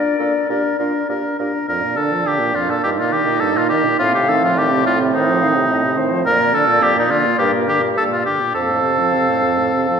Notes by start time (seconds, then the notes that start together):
Already playing: D4 A#4 D5
0.18 A#2 D4 A4 A#4
0.49 A#2 D4 G4 A#4
0.79 A#2 D4 F4 A#4
1.09 A#2 D4 G4 A#4
1.39 A#2 D4 G4 A#4
1.68 F2 A#2 D4 A#4 D5
1.83 A#2
1.97 D3 A4
2.12 F3
2.25 D3 G4
2.40 A#2
2.55 F2 F4
2.69 A#2 A4
2.83 G2 D#4 G4 D#5
2.99 A#2 F4
3.12 D#3 G4
3.27 A#2
3.40 G2 A4
3.56 A#2 F4
3.69 D#3 G4
3.84 A#2
3.98 A2 C4 F4 F5
4.14 C3 G4
4.29 D#3 A4
4.43 F3 F4
4.55 D#3 G4 D5
4.71 C3
4.85 A2 F4
4.99 C3
5.13 D#3 D#4 C5
5.28 F3
5.41 D#3 F5
5.56 C3
5.69 A2 D#5
5.84 C3
5.96 D#3 C5
6.12 F3
6.26 F2 A#2 A#3 A#4 D5
6.39 A#2
6.53 D3 A4
6.67 A#2
6.81 F2 G4
6.96 A#2 D#4
7.10 D3 F4
7.26 A#2
7.39 G2 G4 A#4
7.53 A#2
7.67 D3 G4
7.82 A#2
7.96 G2 A4 D5
8.10 A#2 F4
8.25 D3 G4
8.41 A#2
8.55 F2 C4 A4 F5
8.69 A2
8.83 C3
8.99 F3
9.14 C3
9.29 A2
9.44 F2
9.58 A2
9.74 C3
9.87 F3